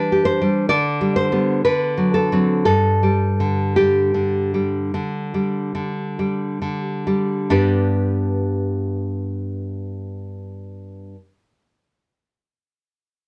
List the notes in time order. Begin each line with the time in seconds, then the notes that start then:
Already playing: E3 G3 D4 G4 B4
0.12 G4
0.25 C5
0.42 G3
0.69 D3 D5
1.01 G3
1.16 C5
1.32 G3 B3
1.65 D3 B4
1.98 F#3
2.14 A4
2.32 F#3 C4
2.65 G2 A4
3.03 G3
3.40 D3
3.76 G3 G4
4.14 D3
4.54 G3
4.94 D3
5.34 G3
5.75 D3
6.19 G3
6.62 D3
7.07 G3
7.50 G2 B3 D4 G4 B4